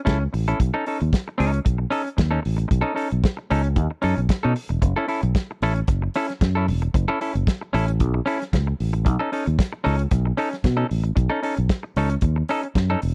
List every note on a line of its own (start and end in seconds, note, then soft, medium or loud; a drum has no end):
0.05 0.26 C#2 medium
0.05 0.23 C#4 medium
0.05 0.20 E4 medium
0.05 0.19 A4 medium
0.05 kick loud
0.05 snare medium
0.05 closed hi-hat medium
0.20 muted clean electric guitar stroke soft
0.33 0.52 A1 medium
0.33 muted clean electric guitar stroke soft
0.33 open hi-hat medium
0.48 0.60 C#4 soft
0.48 0.60 E4 medium
0.48 0.59 A4 medium
0.48 closed hi-hat soft
0.60 0.70 B1 loud
0.60 kick loud
0.60 closed hi-hat medium
0.74 0.86 C#4 medium
0.74 0.86 D#4 medium
0.74 0.87 A4 medium
0.86 1.00 C#4 soft
0.86 1.00 D#4 medium
0.86 0.99 A4 medium
0.86 open hi-hat medium
1.01 1.10 D#2 medium
1.01 closed hi-hat soft
1.13 kick loud
1.13 snare loud
1.13 closed hi-hat medium
1.28 muted clean electric guitar stroke medium
1.38 1.58 C#2 medium
1.38 1.59 C#4 medium
1.38 1.53 D#4 medium
1.38 1.52 A4 medium
1.38 open hi-hat medium
1.53 muted clean electric guitar stroke soft
1.53 closed hi-hat soft
1.65 1.84 B1 medium
1.65 muted clean electric guitar stroke soft
1.65 kick loud
1.65 closed hi-hat medium
1.78 muted clean electric guitar stroke soft
1.90 2.08 C#4 medium
1.90 2.04 D#4 medium
1.90 2.03 A4 loud
1.90 open hi-hat medium
2.04 muted clean electric guitar stroke soft
2.04 closed hi-hat soft
2.17 2.37 D#2 medium
2.17 muted clean electric guitar stroke soft
2.17 kick loud
2.17 snare loud
2.17 closed hi-hat medium
2.31 2.41 C#4 medium
2.31 2.41 D#4 medium
2.31 2.42 A4 medium
2.42 2.64 A1 medium
2.42 muted clean electric guitar stroke soft
2.42 open hi-hat medium
2.57 muted clean electric guitar stroke soft
2.57 closed hi-hat soft
2.68 2.81 B1 loud
2.68 muted clean electric guitar stroke soft
2.68 kick loud
2.68 closed hi-hat medium
2.81 2.93 C#4 medium
2.81 2.94 D#4 medium
2.81 2.95 A4 medium
2.95 3.10 C#4 medium
2.95 3.10 D#4 medium
2.95 3.09 A4 medium
2.95 open hi-hat medium
3.10 3.21 B1 medium
3.10 muted clean electric guitar stroke soft
3.10 closed hi-hat soft
3.24 kick loud
3.24 snare loud
3.24 closed hi-hat medium
3.37 muted clean electric guitar stroke soft
3.50 3.77 C#2 medium
3.50 3.67 C#4 medium
3.50 3.64 D#4 medium
3.50 3.62 A4 medium
3.50 open hi-hat medium
3.64 muted clean electric guitar stroke soft
3.64 closed hi-hat soft
3.76 3.86 D#2 medium
3.76 muted clean electric guitar stroke soft
3.76 kick loud
3.76 closed hi-hat medium
3.91 muted clean electric guitar stroke soft
4.02 4.13 F#2 medium
4.02 4.19 C#4 medium
4.02 4.17 D#4 medium
4.02 4.15 A4 medium
4.02 open hi-hat medium
4.17 4.26 B1 medium
4.17 closed hi-hat soft
4.29 muted clean electric guitar stroke soft
4.29 kick loud
4.29 snare loud
4.29 closed hi-hat medium
4.43 4.53 B2 medium
4.43 4.54 C#4 medium
4.43 4.55 D#4 medium
4.43 4.55 A4 medium
4.56 open hi-hat medium
4.69 4.79 E1 medium
4.69 muted clean electric guitar stroke soft
4.69 closed hi-hat soft
4.82 4.92 F#1 loud
4.82 muted clean electric guitar stroke soft
4.82 kick loud
4.82 closed hi-hat medium
4.96 5.06 C#4 medium
4.96 5.07 E4 medium
4.96 5.08 A4 medium
5.08 5.22 C#4 medium
5.08 5.22 E4 medium
5.08 5.22 A4 medium
5.08 open hi-hat medium
5.23 5.32 B1 medium
5.23 closed hi-hat soft
5.35 kick loud
5.35 snare loud
5.35 closed hi-hat medium
5.51 muted clean electric guitar stroke soft
5.62 5.81 A1 medium
5.62 5.79 C#4 medium
5.62 5.75 E4 medium
5.62 5.74 A4 medium
5.62 open hi-hat medium
5.75 muted clean electric guitar stroke soft
5.75 closed hi-hat soft
5.88 6.07 F#1 medium
5.88 muted clean electric guitar stroke soft
5.88 kick loud
5.88 closed hi-hat medium
6.02 muted clean electric guitar stroke soft
6.14 6.32 C#4 medium
6.14 6.29 E4 medium
6.14 6.28 A4 medium
6.14 open hi-hat medium
6.29 muted clean electric guitar stroke soft
6.29 snare soft
6.29 closed hi-hat soft
6.41 6.70 F#2 medium
6.41 muted clean electric guitar stroke soft
6.41 kick loud
6.41 snare loud
6.41 closed hi-hat medium
6.55 6.67 C#4 medium
6.55 6.67 E4 medium
6.55 6.68 A4 medium
6.68 6.87 E1 medium
6.68 open hi-hat medium
6.82 muted clean electric guitar stroke soft
6.82 closed hi-hat soft
6.94 7.04 F#1 loud
6.94 muted clean electric guitar stroke soft
6.94 kick loud
6.94 closed hi-hat medium
7.08 7.20 C#4 medium
7.08 7.20 E4 medium
7.08 7.21 A4 medium
7.21 7.34 C#4 medium
7.21 7.35 E4 medium
7.21 7.33 A4 medium
7.21 open hi-hat medium
7.34 7.44 F#1 medium
7.34 muted clean electric guitar stroke soft
7.34 closed hi-hat soft
7.47 kick loud
7.47 snare loud
7.47 closed hi-hat medium
7.61 muted clean electric guitar stroke soft
7.73 8.00 A1 loud
7.73 7.90 C#4 medium
7.73 7.88 E4 medium
7.73 7.87 A4 medium
7.73 open hi-hat medium
7.88 muted clean electric guitar stroke soft
7.88 closed hi-hat soft
8.00 8.19 B1 medium
8.00 muted clean electric guitar stroke soft
8.00 kick loud
8.00 closed hi-hat medium
8.14 muted clean electric guitar stroke medium
8.26 8.43 C#4 medium
8.26 8.40 E4 medium
8.26 8.39 A4 medium
8.26 open hi-hat medium
8.40 muted clean electric guitar stroke soft
8.40 snare soft
8.40 closed hi-hat soft
8.53 8.72 C#2 medium
8.53 muted clean electric guitar stroke soft
8.53 kick medium
8.53 snare loud
8.53 closed hi-hat medium
8.67 muted clean electric guitar stroke soft
8.80 9.06 A1 medium
8.80 open hi-hat medium
8.93 muted clean electric guitar stroke soft
8.93 closed hi-hat soft
9.05 9.16 B1 loud
9.05 muted clean electric guitar stroke soft
9.05 kick loud
9.05 closed hi-hat medium
9.19 9.31 C#4 medium
9.19 9.31 D#4 medium
9.19 9.32 A4 medium
9.32 9.46 C#4 medium
9.32 9.46 D#4 medium
9.32 9.45 A4 medium
9.32 open hi-hat medium
9.46 9.56 D#2 medium
9.46 muted clean electric guitar stroke soft
9.46 closed hi-hat soft
9.59 kick loud
9.59 snare loud
9.59 closed hi-hat medium
9.72 muted clean electric guitar stroke medium
9.84 10.05 C#2 loud
9.84 10.02 C#4 medium
9.84 9.98 D#4 medium
9.84 9.97 A4 loud
9.84 open hi-hat medium
9.98 muted clean electric guitar stroke soft
9.98 closed hi-hat medium
10.11 10.31 B1 medium
10.11 muted clean electric guitar stroke soft
10.11 kick loud
10.11 closed hi-hat medium
10.26 muted clean electric guitar stroke soft
10.37 10.55 C#4 medium
10.37 10.51 D#4 medium
10.37 10.50 A4 medium
10.37 open hi-hat medium
10.51 muted clean electric guitar stroke soft
10.51 snare soft
10.51 closed hi-hat soft
10.64 10.83 B2 medium
10.64 muted clean electric guitar stroke soft
10.64 kick loud
10.64 snare medium
10.64 closed hi-hat medium
10.77 10.88 C#4 medium
10.77 10.88 D#4 medium
10.77 10.88 A4 medium
10.89 11.10 A1 medium
10.89 muted clean electric guitar stroke soft
10.89 open hi-hat medium
11.04 muted clean electric guitar stroke soft
11.04 closed hi-hat soft
11.16 11.27 B1 loud
11.16 muted clean electric guitar stroke soft
11.16 kick loud
11.16 closed hi-hat medium
11.30 11.41 C#4 medium
11.30 11.42 D#4 medium
11.30 11.43 A4 medium
11.42 11.57 C#4 medium
11.42 11.56 D#4 medium
11.42 11.56 A4 medium
11.42 open hi-hat medium
11.57 11.67 B1 medium
11.57 muted clean electric guitar stroke soft
11.57 closed hi-hat soft
11.69 kick loud
11.69 snare loud
11.69 closed hi-hat medium
11.83 muted clean electric guitar stroke soft
11.96 12.15 C#2 medium
11.96 12.14 C#4 medium
11.96 12.11 D#4 medium
11.96 12.11 A4 medium
11.96 open hi-hat medium
12.09 muted clean electric guitar stroke soft
12.09 closed hi-hat soft
12.21 12.41 D#2 medium
12.21 muted clean electric guitar stroke soft
12.21 kick loud
12.21 closed hi-hat medium
12.36 muted clean electric guitar stroke soft
12.48 12.66 C#4 medium
12.48 12.64 D#4 medium
12.48 12.63 A4 medium
12.48 open hi-hat medium
12.63 muted clean electric guitar stroke soft
12.63 closed hi-hat soft
12.75 12.95 F#2 medium
12.75 muted clean electric guitar stroke soft
12.75 kick medium
12.75 snare loud
12.75 closed hi-hat medium
12.90 13.00 C#4 medium
12.90 13.01 D#4 medium
12.90 13.02 A4 medium
13.02 13.14 E1 medium
13.02 muted clean electric guitar stroke soft
13.02 open hi-hat medium